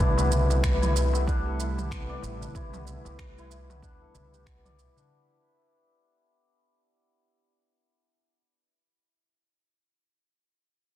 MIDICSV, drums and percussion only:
0, 0, Header, 1, 3, 480
1, 0, Start_track
1, 0, Tempo, 638298
1, 1916, Time_signature, 4, 2, 24, 8
1, 8240, End_track
2, 0, Start_track
2, 0, Title_t, "Darbuka"
2, 133, Note_on_c, 9, 62, 45
2, 133, Note_on_c, 9, 63, 56
2, 208, Note_off_c, 9, 62, 0
2, 208, Note_off_c, 9, 63, 0
2, 233, Note_on_c, 9, 64, 92
2, 309, Note_off_c, 9, 64, 0
2, 376, Note_on_c, 9, 62, 42
2, 378, Note_on_c, 9, 63, 57
2, 452, Note_off_c, 9, 62, 0
2, 454, Note_off_c, 9, 63, 0
2, 721, Note_on_c, 9, 62, 53
2, 796, Note_off_c, 9, 62, 0
2, 853, Note_on_c, 9, 63, 56
2, 928, Note_off_c, 9, 63, 0
2, 1097, Note_on_c, 9, 62, 36
2, 1172, Note_off_c, 9, 62, 0
2, 1674, Note_on_c, 9, 62, 57
2, 1749, Note_off_c, 9, 62, 0
2, 1816, Note_on_c, 9, 64, 98
2, 1891, Note_off_c, 9, 64, 0
2, 2056, Note_on_c, 9, 62, 46
2, 2059, Note_on_c, 9, 63, 61
2, 2131, Note_off_c, 9, 62, 0
2, 2134, Note_off_c, 9, 63, 0
2, 2144, Note_on_c, 9, 64, 81
2, 2219, Note_off_c, 9, 64, 0
2, 2295, Note_on_c, 9, 63, 55
2, 2299, Note_on_c, 9, 62, 38
2, 2370, Note_off_c, 9, 63, 0
2, 2374, Note_off_c, 9, 62, 0
2, 2631, Note_on_c, 9, 62, 46
2, 2706, Note_off_c, 9, 62, 0
2, 2782, Note_on_c, 9, 63, 53
2, 2858, Note_off_c, 9, 63, 0
2, 3117, Note_on_c, 9, 64, 91
2, 3192, Note_off_c, 9, 64, 0
2, 3734, Note_on_c, 9, 64, 90
2, 3809, Note_off_c, 9, 64, 0
2, 8240, End_track
3, 0, Start_track
3, 0, Title_t, "Drums"
3, 0, Note_on_c, 9, 36, 96
3, 0, Note_on_c, 9, 82, 41
3, 73, Note_off_c, 9, 82, 0
3, 74, Note_off_c, 9, 36, 0
3, 139, Note_on_c, 9, 82, 31
3, 215, Note_off_c, 9, 82, 0
3, 240, Note_on_c, 9, 82, 74
3, 315, Note_off_c, 9, 82, 0
3, 381, Note_on_c, 9, 82, 32
3, 456, Note_off_c, 9, 82, 0
3, 479, Note_on_c, 9, 26, 97
3, 479, Note_on_c, 9, 36, 104
3, 482, Note_on_c, 9, 82, 41
3, 554, Note_off_c, 9, 26, 0
3, 554, Note_off_c, 9, 36, 0
3, 558, Note_off_c, 9, 82, 0
3, 619, Note_on_c, 9, 45, 70
3, 623, Note_on_c, 9, 82, 31
3, 694, Note_off_c, 9, 45, 0
3, 698, Note_off_c, 9, 82, 0
3, 725, Note_on_c, 9, 82, 76
3, 800, Note_off_c, 9, 82, 0
3, 865, Note_on_c, 9, 82, 31
3, 940, Note_off_c, 9, 82, 0
3, 959, Note_on_c, 9, 36, 100
3, 966, Note_on_c, 9, 82, 42
3, 1035, Note_off_c, 9, 36, 0
3, 1041, Note_off_c, 9, 82, 0
3, 1203, Note_on_c, 9, 82, 72
3, 1279, Note_off_c, 9, 82, 0
3, 1342, Note_on_c, 9, 45, 62
3, 1345, Note_on_c, 9, 82, 29
3, 1417, Note_off_c, 9, 45, 0
3, 1420, Note_off_c, 9, 82, 0
3, 1438, Note_on_c, 9, 36, 93
3, 1443, Note_on_c, 9, 26, 87
3, 1446, Note_on_c, 9, 82, 41
3, 1513, Note_off_c, 9, 36, 0
3, 1518, Note_off_c, 9, 26, 0
3, 1521, Note_off_c, 9, 82, 0
3, 1684, Note_on_c, 9, 82, 70
3, 1759, Note_off_c, 9, 82, 0
3, 1823, Note_on_c, 9, 82, 33
3, 1898, Note_off_c, 9, 82, 0
3, 1917, Note_on_c, 9, 36, 96
3, 1920, Note_on_c, 9, 82, 43
3, 1993, Note_off_c, 9, 36, 0
3, 1995, Note_off_c, 9, 82, 0
3, 2056, Note_on_c, 9, 45, 63
3, 2059, Note_on_c, 9, 82, 29
3, 2131, Note_off_c, 9, 45, 0
3, 2134, Note_off_c, 9, 82, 0
3, 2160, Note_on_c, 9, 82, 71
3, 2235, Note_off_c, 9, 82, 0
3, 2301, Note_on_c, 9, 82, 31
3, 2376, Note_off_c, 9, 82, 0
3, 2397, Note_on_c, 9, 36, 101
3, 2399, Note_on_c, 9, 26, 88
3, 2402, Note_on_c, 9, 82, 43
3, 2472, Note_off_c, 9, 36, 0
3, 2474, Note_off_c, 9, 26, 0
3, 2477, Note_off_c, 9, 82, 0
3, 2543, Note_on_c, 9, 82, 29
3, 2618, Note_off_c, 9, 82, 0
3, 2642, Note_on_c, 9, 82, 78
3, 2717, Note_off_c, 9, 82, 0
3, 2782, Note_on_c, 9, 45, 63
3, 2785, Note_on_c, 9, 82, 29
3, 2857, Note_off_c, 9, 45, 0
3, 2860, Note_off_c, 9, 82, 0
3, 2877, Note_on_c, 9, 36, 96
3, 2884, Note_on_c, 9, 82, 39
3, 2952, Note_off_c, 9, 36, 0
3, 2959, Note_off_c, 9, 82, 0
3, 3121, Note_on_c, 9, 82, 67
3, 3196, Note_off_c, 9, 82, 0
3, 3263, Note_on_c, 9, 82, 29
3, 3338, Note_off_c, 9, 82, 0
3, 3357, Note_on_c, 9, 36, 89
3, 3360, Note_on_c, 9, 26, 83
3, 3363, Note_on_c, 9, 82, 38
3, 3432, Note_off_c, 9, 36, 0
3, 3435, Note_off_c, 9, 26, 0
3, 3438, Note_off_c, 9, 82, 0
3, 3500, Note_on_c, 9, 45, 66
3, 3503, Note_on_c, 9, 82, 28
3, 3575, Note_off_c, 9, 45, 0
3, 3578, Note_off_c, 9, 82, 0
3, 3603, Note_on_c, 9, 82, 72
3, 3678, Note_off_c, 9, 82, 0
3, 3743, Note_on_c, 9, 82, 30
3, 3819, Note_off_c, 9, 82, 0
3, 8240, End_track
0, 0, End_of_file